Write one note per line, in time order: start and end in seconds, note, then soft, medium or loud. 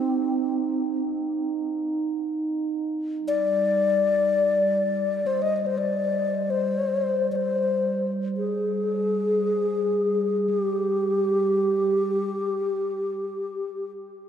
0.00 1.01 C4 medium
0.00 2.97 D#4 medium
3.13 11.97 G3 medium
3.28 5.28 D5 loud
5.27 5.44 C5 medium
5.42 5.56 D#5 medium
5.56 5.68 D#5 medium
5.66 5.79 C5 medium
5.78 6.52 D5 medium
6.50 7.30 C5 medium
7.32 8.12 C5 medium
7.32 7.37 D5 medium
8.37 10.50 G#4 medium
10.50 10.61 G#4 medium
10.61 13.91 G4 medium